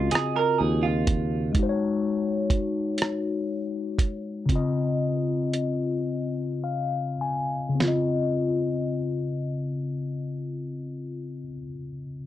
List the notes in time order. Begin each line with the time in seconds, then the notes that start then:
Already playing: C#3 C4 F4 F#4 D#5
0.11 G#4, muted fretless electric bass stroke, closed hi-hat
0.15 cross-stick
0.36 A#4
0.58 D#2 G#4
0.83 F4
1.07 kick, closed hi-hat
1.53 G#3 D#4, kick, closed hi-hat
1.59 F#4 C5
1.69 C#5
2.50 kick, closed hi-hat
2.98 closed hi-hat
3.02 cross-stick
3.99 kick, closed hi-hat
4.46 C#3 C4, kick, closed hi-hat
4.52 F4 D#5
5.54 closed hi-hat
6.64 F5
7.21 G#5
7.69 C#3
7.75 C4
7.80 F4, snare
7.88 D#5